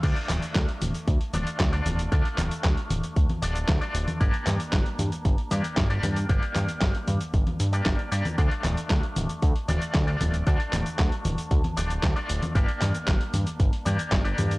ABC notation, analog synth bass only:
X:1
M:4/4
L:1/8
Q:1/4=115
K:Dm
V:1 name="Analog synth bass" clef=bass
D,, D,,, D,, D,,, D,, D,,, D,, D,,, | D,, D,,, D,, D,,, D,, D,,, D,, D,,, | G,,, G,, G,,, G,, G,,, G,, G,,, G,, | G,,, G,, G,,, G,, G,,, G,, G,,, G,, |
D,, D,,, D,, D,,, D,, D,,, D,, D,,, | D,, D,,, D,, D,,, D,, D,,, D,, D,,, | G,,, G,, G,,, G,, G,,, G,, G,,, G,, |]